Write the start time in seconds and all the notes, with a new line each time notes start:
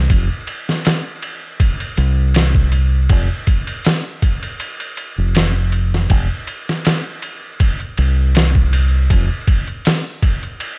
0.10 F1, kick, ride
0.47 ride
0.69 snare
0.85 snare, ride
1.22 ride
1.60 kick, ride
1.80 ride
1.97 C2, ride
2.34 snare, ride
2.55 kick
2.72 ride
3.09 F1, kick, ride
3.47 kick, ride
3.67 ride
3.85 snare, open hi-hat
4.22 kick, ride
4.43 ride
4.60 ride
4.80 ride
4.97 ride
5.18 F1
5.35 snare, ride
5.72 ride
5.94 snare
6.10 F1, kick, ride
6.47 ride
6.69 snare
6.85 snare, ride
7.22 ride
7.60 kick, ride
7.80 ride
7.97 C2, ride
8.35 snare, ride
8.55 kick
8.73 ride
9.10 F1, kick, ride
9.47 kick, ride
9.67 ride
9.85 snare, open hi-hat
10.22 kick, ride
10.43 ride
10.60 ride